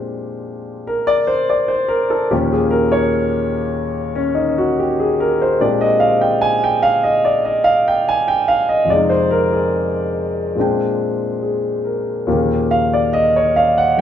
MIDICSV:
0, 0, Header, 1, 2, 480
1, 0, Start_track
1, 0, Tempo, 837989
1, 1325, Time_signature, 4, 2, 24, 8
1, 1325, Tempo, 821918
1, 5645, Tempo, 853485
1, 8063, End_track
2, 0, Start_track
2, 0, Title_t, "Grand piano"
2, 0, Program_c, 0, 0
2, 0, Control_c, 0, 64, 127
2, 0, Note_on_c, 0, 46, 47
2, 0, Note_on_c, 0, 56, 41
2, 0, Note_on_c, 0, 60, 43
2, 0, Note_on_c, 0, 62, 44
2, 0, Note_on_c, 0, 67, 52
2, 500, Note_on_c, 0, 70, 61
2, 613, Note_on_c, 0, 74, 91
2, 673, Note_off_c, 0, 70, 0
2, 729, Note_off_c, 0, 74, 0
2, 729, Note_on_c, 0, 72, 74
2, 827, Note_off_c, 0, 72, 0
2, 856, Note_on_c, 0, 74, 75
2, 963, Note_on_c, 0, 72, 70
2, 1009, Note_off_c, 0, 74, 0
2, 1079, Note_on_c, 0, 70, 78
2, 1140, Note_off_c, 0, 72, 0
2, 1199, Note_off_c, 0, 70, 0
2, 1204, Note_on_c, 0, 69, 63
2, 1301, Note_off_c, 0, 69, 0
2, 1308, Note_off_c, 0, 46, 0
2, 1314, Note_off_c, 0, 67, 0
2, 1317, Note_off_c, 0, 56, 0
2, 1321, Note_on_c, 0, 46, 51
2, 1323, Note_on_c, 0, 39, 56
2, 1323, Note_on_c, 0, 53, 51
2, 1323, Note_on_c, 0, 67, 67
2, 1326, Note_off_c, 0, 60, 0
2, 1328, Note_on_c, 0, 58, 54
2, 1328, Note_on_c, 0, 61, 48
2, 1334, Control_c, 0, 64, 0
2, 1335, Note_off_c, 0, 62, 0
2, 1437, Control_c, 0, 64, 127
2, 1448, Note_on_c, 0, 68, 61
2, 1480, Note_off_c, 0, 67, 0
2, 1554, Note_on_c, 0, 70, 75
2, 1621, Note_off_c, 0, 68, 0
2, 1675, Note_off_c, 0, 70, 0
2, 1677, Note_on_c, 0, 73, 79
2, 2154, Note_off_c, 0, 73, 0
2, 2391, Note_off_c, 0, 61, 0
2, 2400, Note_on_c, 0, 61, 62
2, 2512, Note_on_c, 0, 63, 69
2, 2579, Note_off_c, 0, 61, 0
2, 2635, Note_off_c, 0, 63, 0
2, 2648, Note_on_c, 0, 66, 65
2, 2745, Note_off_c, 0, 66, 0
2, 2773, Note_on_c, 0, 67, 67
2, 2892, Note_on_c, 0, 68, 64
2, 2927, Note_off_c, 0, 67, 0
2, 3012, Note_on_c, 0, 70, 76
2, 3065, Note_off_c, 0, 68, 0
2, 3125, Note_off_c, 0, 70, 0
2, 3137, Note_on_c, 0, 72, 70
2, 3227, Note_off_c, 0, 72, 0
2, 3239, Note_off_c, 0, 46, 0
2, 3243, Note_off_c, 0, 39, 0
2, 3243, Note_off_c, 0, 53, 0
2, 3246, Note_off_c, 0, 58, 0
2, 3247, Note_on_c, 0, 56, 50
2, 3248, Note_on_c, 0, 46, 53
2, 3250, Note_on_c, 0, 60, 48
2, 3250, Note_on_c, 0, 74, 69
2, 3251, Control_c, 0, 64, 0
2, 3254, Note_on_c, 0, 62, 48
2, 3258, Note_on_c, 0, 67, 59
2, 3366, Control_c, 0, 64, 127
2, 3366, Note_on_c, 0, 75, 74
2, 3401, Note_off_c, 0, 74, 0
2, 3478, Note_on_c, 0, 77, 81
2, 3538, Note_off_c, 0, 75, 0
2, 3595, Note_off_c, 0, 77, 0
2, 3602, Note_on_c, 0, 79, 70
2, 3698, Note_off_c, 0, 79, 0
2, 3720, Note_on_c, 0, 80, 93
2, 3850, Note_on_c, 0, 79, 81
2, 3876, Note_off_c, 0, 80, 0
2, 3960, Note_on_c, 0, 77, 91
2, 4021, Note_off_c, 0, 79, 0
2, 4077, Note_off_c, 0, 77, 0
2, 4081, Note_on_c, 0, 75, 77
2, 4178, Note_off_c, 0, 75, 0
2, 4206, Note_on_c, 0, 74, 72
2, 4324, Note_on_c, 0, 75, 69
2, 4360, Note_off_c, 0, 74, 0
2, 4437, Note_on_c, 0, 77, 90
2, 4498, Note_off_c, 0, 75, 0
2, 4556, Note_off_c, 0, 77, 0
2, 4574, Note_on_c, 0, 79, 75
2, 4665, Note_off_c, 0, 79, 0
2, 4696, Note_on_c, 0, 80, 88
2, 4809, Note_on_c, 0, 79, 82
2, 4845, Note_off_c, 0, 80, 0
2, 4927, Note_on_c, 0, 77, 88
2, 4981, Note_off_c, 0, 79, 0
2, 5041, Note_off_c, 0, 77, 0
2, 5047, Note_on_c, 0, 75, 74
2, 5140, Note_on_c, 0, 41, 51
2, 5141, Note_off_c, 0, 75, 0
2, 5160, Note_on_c, 0, 48, 50
2, 5163, Note_off_c, 0, 46, 0
2, 5163, Note_off_c, 0, 56, 0
2, 5164, Note_off_c, 0, 60, 0
2, 5166, Note_off_c, 0, 62, 0
2, 5168, Note_off_c, 0, 67, 0
2, 5170, Control_c, 0, 64, 0
2, 5172, Note_on_c, 0, 74, 68
2, 5179, Note_on_c, 0, 56, 48
2, 5202, Note_on_c, 0, 63, 61
2, 5271, Control_c, 0, 64, 127
2, 5286, Note_on_c, 0, 72, 73
2, 5323, Note_off_c, 0, 74, 0
2, 5410, Note_on_c, 0, 70, 72
2, 5461, Note_off_c, 0, 72, 0
2, 5524, Note_off_c, 0, 70, 0
2, 5536, Note_on_c, 0, 68, 60
2, 6112, Note_off_c, 0, 41, 0
2, 6119, Note_on_c, 0, 46, 48
2, 6121, Note_off_c, 0, 48, 0
2, 6121, Note_off_c, 0, 56, 0
2, 6129, Note_on_c, 0, 56, 47
2, 6130, Control_c, 0, 64, 0
2, 6135, Note_on_c, 0, 60, 44
2, 6141, Note_off_c, 0, 63, 0
2, 6142, Note_on_c, 0, 62, 45
2, 6150, Note_on_c, 0, 79, 51
2, 6242, Control_c, 0, 64, 127
2, 6600, Note_off_c, 0, 68, 0
2, 6608, Note_on_c, 0, 68, 37
2, 6847, Note_on_c, 0, 70, 38
2, 6985, Note_off_c, 0, 68, 0
2, 7077, Note_off_c, 0, 46, 0
2, 7082, Note_on_c, 0, 39, 51
2, 7086, Note_on_c, 0, 46, 44
2, 7087, Note_off_c, 0, 56, 0
2, 7087, Note_on_c, 0, 53, 44
2, 7090, Note_off_c, 0, 60, 0
2, 7090, Note_on_c, 0, 49, 48
2, 7090, Note_on_c, 0, 58, 47
2, 7091, Control_c, 0, 64, 0
2, 7092, Note_on_c, 0, 67, 55
2, 7094, Note_off_c, 0, 62, 0
2, 7098, Note_off_c, 0, 79, 0
2, 7186, Note_off_c, 0, 70, 0
2, 7204, Control_c, 0, 64, 127
2, 7332, Note_on_c, 0, 77, 80
2, 7447, Note_off_c, 0, 77, 0
2, 7459, Note_on_c, 0, 74, 68
2, 7551, Note_off_c, 0, 74, 0
2, 7569, Note_on_c, 0, 75, 84
2, 7699, Note_on_c, 0, 73, 71
2, 7726, Note_off_c, 0, 75, 0
2, 7811, Note_on_c, 0, 77, 79
2, 7870, Note_off_c, 0, 73, 0
2, 7926, Note_off_c, 0, 77, 0
2, 7932, Note_on_c, 0, 78, 79
2, 8026, Note_off_c, 0, 78, 0
2, 8042, Note_on_c, 0, 51, 40
2, 8046, Note_on_c, 0, 55, 37
2, 8051, Note_off_c, 0, 67, 0
2, 8063, Note_off_c, 0, 39, 0
2, 8063, Note_off_c, 0, 46, 0
2, 8063, Note_off_c, 0, 49, 0
2, 8063, Note_off_c, 0, 51, 0
2, 8063, Note_off_c, 0, 53, 0
2, 8063, Note_off_c, 0, 55, 0
2, 8063, Note_off_c, 0, 58, 0
2, 8063, End_track
0, 0, End_of_file